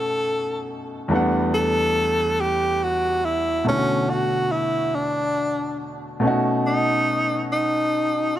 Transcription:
0.00 1.07 B2 medium
0.00 1.08 A3 medium
0.00 1.08 C#4 medium
0.00 1.09 D#4 medium
0.00 0.76 A4 loud
0.00 1.10 F#5 medium
1.08 3.61 E2 medium
1.08 3.62 G3 medium
1.08 3.63 A3 medium
1.13 3.63 B3 medium
1.13 3.64 D4 medium
1.13 3.65 F#5 medium
1.54 2.42 A4 loud
2.40 2.85 G4 loud
2.84 3.26 F#4 loud
3.25 3.67 E4 loud
3.64 6.17 B2 medium
3.64 6.18 A3 medium
3.64 6.19 C#5 medium
3.68 6.20 D3 medium
3.68 4.11 C#4 loud
3.68 3.76 E4 medium
3.78 6.24 F#4 medium
4.10 4.53 F#4 medium
4.52 4.96 E4 medium
4.95 5.90 D4 medium
6.20 8.39 B2 medium
6.20 8.39 A3 medium
6.20 8.39 C#4 medium
6.25 8.39 D#4 medium
6.25 8.39 F#4 medium
6.66 7.47 D#4 loud
7.52 8.38 D#4 loud
8.36 8.39 F#4 loud

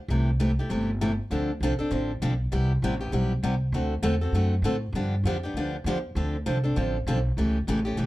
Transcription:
0.08 0.57 C2 loud
0.08 0.29 C3 medium
0.08 0.30 E3 medium
0.08 0.29 A3 medium
0.08 0.29 E4 medium
0.08 0.30 G4 medium
0.40 0.50 C3 medium
0.40 0.50 E3 medium
0.40 0.50 A3 medium
0.40 0.50 E4 medium
0.40 0.51 G4 loud
0.59 0.70 A3 soft
0.59 0.70 E4 medium
0.59 0.70 G4 medium
0.69 1.18 G1 medium
0.69 0.89 C3 medium
0.69 0.89 E3 medium
0.69 0.90 A3 medium
0.69 0.90 E4 medium
0.69 0.90 G4 medium
1.01 1.11 C3 medium
1.01 1.11 E3 medium
1.01 1.11 A3 medium
1.01 1.12 E4 loud
1.01 1.12 G4 loud
1.30 1.60 D2 medium
1.30 1.50 D3 medium
1.30 1.50 F3 medium
1.30 1.51 C4 medium
1.30 1.51 D4 medium
1.30 1.51 A4 medium
1.60 1.77 C2 medium
1.60 1.72 D3 medium
1.60 1.73 F3 medium
1.60 1.73 C4 medium
1.60 1.73 D4 loud
1.60 1.73 A4 loud
1.79 1.90 C4 soft
1.79 1.91 D4 medium
1.79 1.91 A4 medium
1.79 muted upright bass stroke soft
1.91 2.20 A1 medium
1.91 2.10 D3 medium
1.91 2.11 F3 medium
1.91 2.11 C4 medium
1.91 2.11 D4 medium
1.91 2.11 A4 medium
2.22 2.51 B1 medium
2.22 2.32 D3 medium
2.22 2.33 F3 loud
2.22 2.33 C4 loud
2.22 2.33 D4 medium
2.22 2.33 A4 medium
2.52 2.81 C2 medium
2.52 2.71 C3 medium
2.52 2.71 G3 medium
2.52 2.71 B3 medium
2.52 2.72 E4 medium
2.52 2.72 G4 medium
2.82 3.11 A1 medium
2.82 2.94 C3 medium
2.82 2.94 G3 medium
2.82 2.94 B3 medium
2.82 2.94 E4 loud
2.82 2.94 G4 loud
3.01 3.12 B3 soft
3.01 3.12 E4 soft
3.01 3.12 G4 medium
3.12 3.42 B1 medium
3.12 3.32 C3 medium
3.12 3.32 G3 medium
3.12 3.32 B3 medium
3.12 3.32 E4 medium
3.12 3.32 G4 medium
3.43 3.72 C2 medium
3.43 3.54 C3 medium
3.43 3.54 G3 medium
3.43 3.54 B3 loud
3.43 3.54 E4 medium
3.43 3.54 G4 medium
3.72 4.02 D2 medium
3.72 3.93 D3 medium
3.72 3.93 A3 medium
3.72 3.93 C4 medium
3.72 3.93 F#4 medium
3.72 3.93 A4 medium
4.02 4.32 E2 medium
4.02 4.14 D3 medium
4.02 4.14 A3 loud
4.02 4.14 C4 loud
4.02 4.14 F#4 loud
4.02 4.14 A4 loud
4.21 4.34 C4 soft
4.21 4.34 F#4 soft
4.21 4.33 A4 medium
4.32 4.61 F#2 medium
4.32 4.54 D3 medium
4.32 4.54 A3 medium
4.32 4.54 C4 medium
4.32 4.54 F#4 medium
4.32 4.54 A4 medium
4.62 4.92 A2 medium
4.62 4.75 D3 medium
4.62 4.75 A3 medium
4.62 4.75 C4 medium
4.62 4.75 F#4 medium
4.62 4.75 A4 loud
4.92 5.23 G2 medium
4.92 5.14 D3 medium
4.92 5.14 F3 medium
4.92 5.15 B3 medium
4.92 5.15 D4 medium
4.92 5.15 G4 medium
5.23 5.53 F2 medium
5.23 5.36 D3 medium
5.23 5.36 F3 loud
5.23 5.36 B3 loud
5.23 5.37 D4 medium
5.23 5.37 G4 medium
5.43 5.56 B3 soft
5.43 5.56 D4 medium
5.43 5.55 G4 medium
5.54 5.84 D2 medium
5.54 5.75 D3 medium
5.54 5.76 F3 medium
5.54 5.75 B3 medium
5.54 5.76 D4 medium
5.54 5.75 G4 medium
5.84 6.14 E2 medium
5.84 5.97 D3 medium
5.84 5.97 F3 loud
5.84 5.97 B3 loud
5.84 5.97 D4 loud
5.84 5.97 G4 loud
6.15 6.45 D2 medium
6.15 6.36 D3 medium
6.15 6.36 F3 medium
6.15 6.36 C4 medium
6.15 6.36 D4 medium
6.15 6.36 A4 medium
6.46 6.76 C2 medium
6.46 6.57 D3 medium
6.46 6.57 F3 medium
6.46 6.57 C4 medium
6.46 6.57 D4 loud
6.46 6.57 A4 loud
6.64 6.76 C4 soft
6.64 6.76 D4 medium
6.64 6.76 A4 medium
6.76 7.06 A1 medium
6.76 6.96 D3 medium
6.76 6.96 F3 medium
6.76 6.96 C4 medium
6.76 6.96 D4 medium
6.76 6.96 A4 medium
7.07 7.36 B1 loud
7.07 7.18 D3 medium
7.07 7.18 F3 medium
7.07 7.18 C4 medium
7.07 7.18 D4 loud
7.07 7.18 A4 medium
7.37 7.67 C#2 medium
7.37 7.57 C#3 medium
7.37 7.57 E3 medium
7.37 7.57 A3 medium
7.37 7.58 C#4 medium
7.37 7.58 G4 medium
7.67 7.96 A1 medium
7.67 7.78 C#3 medium
7.67 7.79 E3 medium
7.67 7.79 A3 medium
7.67 7.79 C#4 medium
7.67 7.79 G4 loud
7.85 7.97 A3 medium
7.85 7.96 C#4 medium
7.85 7.97 G4 medium
7.97 8.06 B1 medium
7.97 8.06 C#3 medium
7.97 8.06 E3 medium
7.97 8.06 A3 medium
7.97 8.06 C#4 medium
7.97 8.06 G4 medium

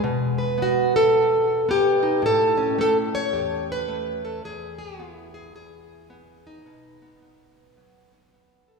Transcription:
0.04 2.22 B2 medium
0.38 2.22 B4 soft
0.58 1.67 B3 medium
0.62 0.95 F#4 medium
0.96 1.70 A4 medium
1.69 2.22 B3 medium
1.69 2.25 G4 medium
2.03 2.21 D#4 soft
2.22 3.34 A2 medium
2.22 2.80 A4 loud
2.57 4.42 C#4 soft
2.79 3.87 A3 medium
2.79 2.97 A4 medium
3.15 3.70 C#5 loud
3.33 4.43 E2 medium
3.33 4.24 G4 medium
3.72 4.46 B4 loud
3.88 4.42 A3 medium
4.25 4.45 A4 medium
4.44 5.53 E2 medium
4.44 5.33 G#4 medium
4.78 5.90 E4 medium
4.99 6.10 B3 medium
5.34 5.54 G#4 medium
5.55 6.65 E2 medium
5.55 6.66 G#4 loud
6.10 6.66 B3 medium
6.47 8.80 D#4 medium
6.65 8.80 B2 medium
6.65 7.01 B3 soft
7.02 7.21 B3 soft
7.22 7.56 B3 medium
7.57 7.76 B3 soft
7.77 8.80 F#3 medium
7.77 8.11 B3 medium
8.12 8.32 B3 soft
8.34 8.80 B3 medium
8.68 8.80 A4 soft

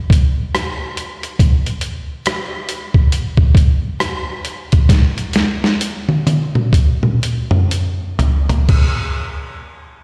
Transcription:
0.10 kick medium
0.10 closed hi-hat medium
0.55 cross-stick medium
0.55 closed hi-hat medium
0.97 closed hi-hat medium
1.23 closed hi-hat soft
1.39 kick medium
1.39 closed hi-hat medium
1.66 closed hi-hat soft
1.81 closed hi-hat medium
2.26 cross-stick loud
2.26 closed hi-hat medium
2.69 closed hi-hat medium
2.94 kick medium
3.12 closed hi-hat medium
3.37 kick medium
3.55 kick medium
3.55 closed hi-hat medium
4.00 cross-stick medium
4.00 closed hi-hat medium
4.45 closed hi-hat medium
4.72 kick medium
4.72 closed hi-hat soft
4.89 kick medium
4.89 snare soft
4.89 closed hi-hat medium
5.18 closed hi-hat soft
5.33 snare medium
5.33 closed hi-hat medium
5.64 snare soft
5.81 closed hi-hat medium
6.09 high tom soft
6.27 closed hi-hat medium
6.27 high tom medium
6.55 mid tom soft
6.73 kick medium
6.73 closed hi-hat medium
7.03 mid tom medium
7.23 closed hi-hat medium
7.51 mid tom medium
7.71 closed hi-hat medium
8.19 closed hi-hat medium
8.19 floor tom medium
8.49 closed hi-hat soft
8.49 floor tom medium
8.69 kick medium
8.69 crash medium

